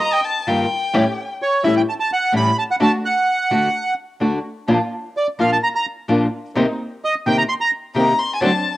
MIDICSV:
0, 0, Header, 1, 5, 480
1, 0, Start_track
1, 0, Tempo, 466200
1, 977, Time_signature, 4, 2, 24, 8
1, 9032, End_track
2, 0, Start_track
2, 0, Title_t, "Violin"
2, 0, Program_c, 0, 40
2, 18, Note_on_c, 0, 82, 81
2, 138, Note_on_c, 0, 79, 67
2, 154, Note_off_c, 0, 82, 0
2, 257, Note_on_c, 0, 81, 70
2, 273, Note_off_c, 0, 79, 0
2, 495, Note_on_c, 0, 79, 69
2, 510, Note_off_c, 0, 81, 0
2, 1333, Note_off_c, 0, 79, 0
2, 8190, Note_on_c, 0, 82, 76
2, 8434, Note_on_c, 0, 84, 78
2, 8449, Note_off_c, 0, 82, 0
2, 8589, Note_off_c, 0, 84, 0
2, 8595, Note_on_c, 0, 80, 56
2, 8655, Note_on_c, 0, 81, 77
2, 8670, Note_off_c, 0, 80, 0
2, 9016, Note_off_c, 0, 81, 0
2, 9032, End_track
3, 0, Start_track
3, 0, Title_t, "Bandoneon"
3, 0, Program_c, 1, 23
3, 0, Note_on_c, 1, 75, 70
3, 209, Note_off_c, 1, 75, 0
3, 1462, Note_on_c, 1, 73, 72
3, 1680, Note_off_c, 1, 73, 0
3, 1686, Note_on_c, 1, 76, 67
3, 1800, Note_off_c, 1, 76, 0
3, 1821, Note_on_c, 1, 79, 70
3, 1872, Note_off_c, 1, 79, 0
3, 1947, Note_on_c, 1, 81, 68
3, 1997, Note_off_c, 1, 81, 0
3, 2060, Note_on_c, 1, 81, 82
3, 2167, Note_off_c, 1, 81, 0
3, 2194, Note_on_c, 1, 78, 75
3, 2405, Note_off_c, 1, 78, 0
3, 2436, Note_on_c, 1, 83, 78
3, 2646, Note_off_c, 1, 83, 0
3, 2663, Note_on_c, 1, 81, 69
3, 2714, Note_off_c, 1, 81, 0
3, 2791, Note_on_c, 1, 78, 73
3, 2839, Note_off_c, 1, 78, 0
3, 2904, Note_on_c, 1, 81, 75
3, 3008, Note_off_c, 1, 81, 0
3, 3142, Note_on_c, 1, 78, 68
3, 4057, Note_off_c, 1, 78, 0
3, 5322, Note_on_c, 1, 74, 52
3, 5428, Note_off_c, 1, 74, 0
3, 5561, Note_on_c, 1, 77, 64
3, 5668, Note_off_c, 1, 77, 0
3, 5690, Note_on_c, 1, 81, 72
3, 5740, Note_off_c, 1, 81, 0
3, 5800, Note_on_c, 1, 82, 69
3, 5852, Note_off_c, 1, 82, 0
3, 5926, Note_on_c, 1, 82, 75
3, 6031, Note_off_c, 1, 82, 0
3, 7255, Note_on_c, 1, 75, 62
3, 7358, Note_off_c, 1, 75, 0
3, 7482, Note_on_c, 1, 79, 67
3, 7588, Note_off_c, 1, 79, 0
3, 7596, Note_on_c, 1, 82, 80
3, 7648, Note_off_c, 1, 82, 0
3, 7708, Note_on_c, 1, 84, 80
3, 7763, Note_off_c, 1, 84, 0
3, 7832, Note_on_c, 1, 82, 67
3, 7939, Note_off_c, 1, 82, 0
3, 9032, End_track
4, 0, Start_track
4, 0, Title_t, "String section"
4, 0, Program_c, 2, 48
4, 493, Note_on_c, 2, 55, 43
4, 496, Note_on_c, 2, 63, 38
4, 497, Note_on_c, 2, 65, 42
4, 697, Note_off_c, 2, 55, 0
4, 698, Note_off_c, 2, 63, 0
4, 699, Note_off_c, 2, 65, 0
4, 968, Note_on_c, 2, 57, 73
4, 972, Note_on_c, 2, 61, 64
4, 973, Note_on_c, 2, 67, 81
4, 1173, Note_off_c, 2, 57, 0
4, 1175, Note_off_c, 2, 61, 0
4, 1176, Note_off_c, 2, 67, 0
4, 1686, Note_on_c, 2, 57, 43
4, 1692, Note_on_c, 2, 61, 36
4, 1692, Note_on_c, 2, 67, 48
4, 1889, Note_off_c, 2, 57, 0
4, 1892, Note_off_c, 2, 61, 0
4, 1892, Note_off_c, 2, 67, 0
4, 2411, Note_on_c, 2, 57, 42
4, 2415, Note_on_c, 2, 61, 38
4, 2415, Note_on_c, 2, 67, 46
4, 2612, Note_off_c, 2, 57, 0
4, 2613, Note_off_c, 2, 61, 0
4, 2613, Note_off_c, 2, 67, 0
4, 2884, Note_on_c, 2, 57, 65
4, 2886, Note_on_c, 2, 62, 63
4, 2890, Note_on_c, 2, 66, 80
4, 3087, Note_off_c, 2, 57, 0
4, 3088, Note_off_c, 2, 62, 0
4, 3090, Note_off_c, 2, 66, 0
4, 3613, Note_on_c, 2, 57, 39
4, 3616, Note_on_c, 2, 62, 37
4, 3619, Note_on_c, 2, 66, 45
4, 3812, Note_off_c, 2, 57, 0
4, 3814, Note_off_c, 2, 62, 0
4, 3815, Note_off_c, 2, 66, 0
4, 4337, Note_on_c, 2, 57, 38
4, 4337, Note_on_c, 2, 62, 33
4, 4340, Note_on_c, 2, 66, 46
4, 4541, Note_off_c, 2, 57, 0
4, 4541, Note_off_c, 2, 62, 0
4, 4542, Note_off_c, 2, 66, 0
4, 4820, Note_on_c, 2, 58, 62
4, 4821, Note_on_c, 2, 62, 57
4, 4825, Note_on_c, 2, 65, 71
4, 5025, Note_off_c, 2, 58, 0
4, 5026, Note_off_c, 2, 62, 0
4, 5028, Note_off_c, 2, 65, 0
4, 5552, Note_on_c, 2, 58, 44
4, 5555, Note_on_c, 2, 62, 37
4, 5559, Note_on_c, 2, 65, 47
4, 5754, Note_off_c, 2, 58, 0
4, 5755, Note_off_c, 2, 62, 0
4, 5757, Note_off_c, 2, 65, 0
4, 6277, Note_on_c, 2, 58, 41
4, 6279, Note_on_c, 2, 62, 37
4, 6281, Note_on_c, 2, 65, 47
4, 6476, Note_off_c, 2, 58, 0
4, 6477, Note_off_c, 2, 62, 0
4, 6478, Note_off_c, 2, 65, 0
4, 6756, Note_on_c, 2, 58, 69
4, 6756, Note_on_c, 2, 60, 62
4, 6759, Note_on_c, 2, 63, 74
4, 6956, Note_off_c, 2, 58, 0
4, 6957, Note_off_c, 2, 60, 0
4, 6958, Note_off_c, 2, 63, 0
4, 7481, Note_on_c, 2, 58, 43
4, 7482, Note_on_c, 2, 60, 41
4, 7484, Note_on_c, 2, 63, 45
4, 7677, Note_off_c, 2, 58, 0
4, 7677, Note_off_c, 2, 60, 0
4, 7679, Note_off_c, 2, 63, 0
4, 8197, Note_on_c, 2, 58, 46
4, 8197, Note_on_c, 2, 60, 40
4, 8201, Note_on_c, 2, 63, 49
4, 8391, Note_off_c, 2, 58, 0
4, 8392, Note_off_c, 2, 60, 0
4, 8393, Note_off_c, 2, 63, 0
4, 8670, Note_on_c, 2, 54, 72
4, 8670, Note_on_c, 2, 60, 65
4, 8675, Note_on_c, 2, 62, 78
4, 8867, Note_off_c, 2, 54, 0
4, 8867, Note_off_c, 2, 60, 0
4, 8869, Note_off_c, 2, 62, 0
4, 9032, End_track
5, 0, Start_track
5, 0, Title_t, "Nylon-string guitar"
5, 0, Program_c, 3, 24
5, 482, Note_on_c, 3, 43, 58
5, 485, Note_on_c, 3, 51, 54
5, 485, Note_on_c, 3, 55, 50
5, 490, Note_on_c, 3, 65, 59
5, 491, Note_on_c, 3, 67, 65
5, 492, Note_on_c, 3, 58, 61
5, 664, Note_off_c, 3, 43, 0
5, 665, Note_off_c, 3, 51, 0
5, 665, Note_off_c, 3, 55, 0
5, 668, Note_off_c, 3, 65, 0
5, 668, Note_off_c, 3, 67, 0
5, 669, Note_off_c, 3, 58, 0
5, 963, Note_on_c, 3, 45, 71
5, 968, Note_on_c, 3, 52, 62
5, 969, Note_on_c, 3, 55, 66
5, 970, Note_on_c, 3, 61, 74
5, 975, Note_on_c, 3, 64, 75
5, 1062, Note_off_c, 3, 45, 0
5, 1065, Note_off_c, 3, 52, 0
5, 1065, Note_off_c, 3, 55, 0
5, 1066, Note_off_c, 3, 61, 0
5, 1068, Note_off_c, 3, 64, 0
5, 1683, Note_on_c, 3, 45, 59
5, 1689, Note_on_c, 3, 52, 61
5, 1689, Note_on_c, 3, 55, 58
5, 1691, Note_on_c, 3, 64, 62
5, 1692, Note_on_c, 3, 61, 59
5, 1860, Note_off_c, 3, 45, 0
5, 1863, Note_off_c, 3, 52, 0
5, 1863, Note_off_c, 3, 55, 0
5, 1864, Note_off_c, 3, 64, 0
5, 1865, Note_off_c, 3, 61, 0
5, 2391, Note_on_c, 3, 45, 57
5, 2397, Note_on_c, 3, 52, 64
5, 2399, Note_on_c, 3, 55, 65
5, 2401, Note_on_c, 3, 61, 57
5, 2407, Note_on_c, 3, 64, 59
5, 2574, Note_off_c, 3, 45, 0
5, 2577, Note_off_c, 3, 52, 0
5, 2578, Note_off_c, 3, 55, 0
5, 2579, Note_off_c, 3, 61, 0
5, 2582, Note_off_c, 3, 64, 0
5, 2881, Note_on_c, 3, 50, 63
5, 2885, Note_on_c, 3, 62, 66
5, 2887, Note_on_c, 3, 57, 67
5, 2888, Note_on_c, 3, 66, 80
5, 2976, Note_off_c, 3, 50, 0
5, 2978, Note_off_c, 3, 62, 0
5, 2979, Note_off_c, 3, 57, 0
5, 2980, Note_off_c, 3, 66, 0
5, 3611, Note_on_c, 3, 50, 47
5, 3612, Note_on_c, 3, 57, 49
5, 3612, Note_on_c, 3, 62, 48
5, 3619, Note_on_c, 3, 66, 59
5, 3783, Note_off_c, 3, 50, 0
5, 3784, Note_off_c, 3, 57, 0
5, 3784, Note_off_c, 3, 62, 0
5, 3788, Note_off_c, 3, 66, 0
5, 4325, Note_on_c, 3, 50, 50
5, 4332, Note_on_c, 3, 57, 54
5, 4335, Note_on_c, 3, 62, 57
5, 4337, Note_on_c, 3, 66, 54
5, 4507, Note_off_c, 3, 50, 0
5, 4510, Note_off_c, 3, 57, 0
5, 4512, Note_off_c, 3, 62, 0
5, 4513, Note_off_c, 3, 66, 0
5, 4816, Note_on_c, 3, 46, 62
5, 4820, Note_on_c, 3, 58, 60
5, 4821, Note_on_c, 3, 53, 68
5, 4821, Note_on_c, 3, 62, 66
5, 4826, Note_on_c, 3, 65, 67
5, 4912, Note_off_c, 3, 46, 0
5, 4914, Note_off_c, 3, 58, 0
5, 4915, Note_off_c, 3, 53, 0
5, 4915, Note_off_c, 3, 62, 0
5, 4917, Note_off_c, 3, 65, 0
5, 5547, Note_on_c, 3, 53, 53
5, 5548, Note_on_c, 3, 58, 52
5, 5549, Note_on_c, 3, 46, 49
5, 5552, Note_on_c, 3, 62, 51
5, 5557, Note_on_c, 3, 65, 56
5, 5723, Note_off_c, 3, 53, 0
5, 5724, Note_off_c, 3, 46, 0
5, 5724, Note_off_c, 3, 58, 0
5, 5726, Note_off_c, 3, 62, 0
5, 5728, Note_off_c, 3, 65, 0
5, 6262, Note_on_c, 3, 46, 53
5, 6265, Note_on_c, 3, 53, 62
5, 6270, Note_on_c, 3, 62, 64
5, 6272, Note_on_c, 3, 58, 60
5, 6272, Note_on_c, 3, 65, 65
5, 6441, Note_off_c, 3, 46, 0
5, 6443, Note_off_c, 3, 53, 0
5, 6445, Note_off_c, 3, 62, 0
5, 6446, Note_off_c, 3, 58, 0
5, 6446, Note_off_c, 3, 65, 0
5, 6748, Note_on_c, 3, 48, 69
5, 6754, Note_on_c, 3, 51, 70
5, 6757, Note_on_c, 3, 60, 62
5, 6760, Note_on_c, 3, 58, 67
5, 6761, Note_on_c, 3, 67, 76
5, 6843, Note_off_c, 3, 48, 0
5, 6846, Note_off_c, 3, 51, 0
5, 6847, Note_off_c, 3, 60, 0
5, 6849, Note_off_c, 3, 58, 0
5, 6849, Note_off_c, 3, 67, 0
5, 7476, Note_on_c, 3, 48, 50
5, 7476, Note_on_c, 3, 51, 60
5, 7480, Note_on_c, 3, 58, 60
5, 7483, Note_on_c, 3, 60, 54
5, 7485, Note_on_c, 3, 67, 49
5, 7647, Note_off_c, 3, 48, 0
5, 7647, Note_off_c, 3, 51, 0
5, 7649, Note_off_c, 3, 58, 0
5, 7651, Note_off_c, 3, 60, 0
5, 7652, Note_off_c, 3, 67, 0
5, 8182, Note_on_c, 3, 48, 56
5, 8192, Note_on_c, 3, 51, 54
5, 8193, Note_on_c, 3, 58, 55
5, 8195, Note_on_c, 3, 60, 61
5, 8197, Note_on_c, 3, 67, 64
5, 8356, Note_off_c, 3, 48, 0
5, 8362, Note_off_c, 3, 51, 0
5, 8362, Note_off_c, 3, 58, 0
5, 8363, Note_off_c, 3, 60, 0
5, 8364, Note_off_c, 3, 67, 0
5, 8657, Note_on_c, 3, 50, 67
5, 8669, Note_on_c, 3, 60, 81
5, 8670, Note_on_c, 3, 57, 69
5, 8672, Note_on_c, 3, 66, 64
5, 8752, Note_off_c, 3, 50, 0
5, 8757, Note_off_c, 3, 60, 0
5, 8758, Note_off_c, 3, 57, 0
5, 8759, Note_off_c, 3, 66, 0
5, 9032, End_track
0, 0, End_of_file